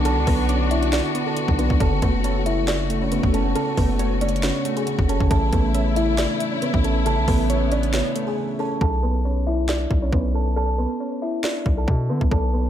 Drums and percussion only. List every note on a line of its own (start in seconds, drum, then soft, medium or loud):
0.05 closed hi-hat medium
0.27 kick medium
0.27 open hi-hat medium
0.49 closed hi-hat medium
0.71 closed hi-hat medium
0.83 closed hi-hat soft
0.93 snare loud
0.93 closed hi-hat medium
1.15 closed hi-hat medium
1.37 closed hi-hat medium
1.48 kick medium
1.59 closed hi-hat medium
1.70 kick medium
1.80 kick loud
1.80 closed hi-hat medium
2.02 kick medium
2.02 closed hi-hat medium
2.24 closed hi-hat medium
2.46 closed hi-hat medium
2.68 snare loud
2.68 closed hi-hat medium
2.90 closed hi-hat medium
3.12 closed hi-hat medium
3.23 kick medium
3.34 closed hi-hat medium
3.56 closed hi-hat medium
3.77 kick medium
3.77 open hi-hat medium
3.99 closed hi-hat medium
4.21 closed hi-hat medium
4.29 closed hi-hat medium
4.36 closed hi-hat soft
4.43 snare loud
4.43 closed hi-hat medium
4.65 closed hi-hat medium
4.77 closed hi-hat soft
4.87 closed hi-hat medium
4.99 kick medium
5.09 closed hi-hat medium
5.20 kick medium
5.31 kick loud
5.31 closed hi-hat medium
5.53 kick medium
5.53 closed hi-hat medium
5.75 closed hi-hat medium
5.96 closed hi-hat medium
6.18 snare loud
6.18 closed hi-hat medium
6.40 closed hi-hat medium
6.62 closed hi-hat medium
6.74 kick medium
6.84 closed hi-hat medium
7.06 closed hi-hat medium
7.28 kick medium
7.28 open hi-hat medium
7.50 closed hi-hat medium
7.72 closed hi-hat medium
7.83 closed hi-hat soft
7.94 snare loud
7.94 closed hi-hat medium
8.16 closed hi-hat medium
8.81 kick loud
9.69 snare loud
9.91 kick medium
10.13 kick loud
11.44 snare loud
11.66 kick loud
11.88 kick loud
12.21 kick medium
12.31 kick loud